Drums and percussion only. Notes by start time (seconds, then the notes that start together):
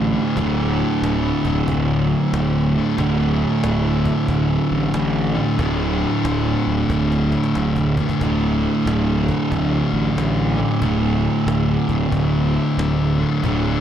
0.13 cajon slap
0.37 cajon bass
0.79 cajon slap
1.04 cajon slap
1.45 cajon bass
1.68 cajon bass
2.10 cajon slap
2.34 cajon slap
2.75 cajon slap
2.98 cajon bass
3.40 cajon slap
3.64 cajon slap
4.05 cajon bass
4.28 cajon bass
4.70 cajon slap
4.94 cajon slap
5.35 cajon slap
5.59 cajon bass
6.01 cajon slap
6.25 cajon slap
6.66 cajon slap
6.90 cajon bass, cajon slap
7.12 cajon slap
7.32 cajon slap
7.44 cajon slap
7.55 cajon slap
7.76 cajon bass
7.97 cajon bass
8.09 cajon bass
8.21 cajon bass
8.87 cajon slap
9.28 cajon bass
9.52 cajon bass
9.94 cajon slap
10.18 cajon slap
10.59 cajon slap
10.82 cajon bass
11.24 cajon slap
11.48 cajon slap
11.89 cajon bass
12.12 cajon bass
12.55 cajon slap
12.79 cajon slap
13.21 cajon slap
13.44 cajon bass